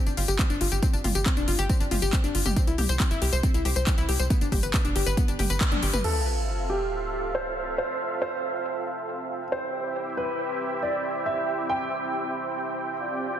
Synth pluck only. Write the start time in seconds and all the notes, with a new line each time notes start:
0.06 D4
0.17 F4
0.28 G4
0.39 C4
0.50 D4
0.61 F4
0.72 G4
0.83 C4
0.93 D4
1.04 F4
1.15 G4
1.26 C4
1.37 D4
1.48 F4
1.59 G4
1.70 C4
1.80 D4
1.91 F4
2.02 G4
2.13 C4
2.24 D4
2.35 F4
2.46 G4
2.57 C4
2.67 E4
2.78 G4
2.89 C5
3.00 C4
3.11 E4
3.22 G4
3.33 C5
3.43 C4
3.54 E4
3.65 G4
3.76 C5
3.87 C4
3.98 E4
4.09 G4
4.20 C5
4.30 B3
4.41 D4
4.52 G4
4.63 B4
4.74 B3
4.85 D4
4.96 G4
5.06 B4
5.17 B3
5.28 D4
5.39 G4
5.50 B4
5.61 B3
5.72 D4
5.83 G4
5.93 B4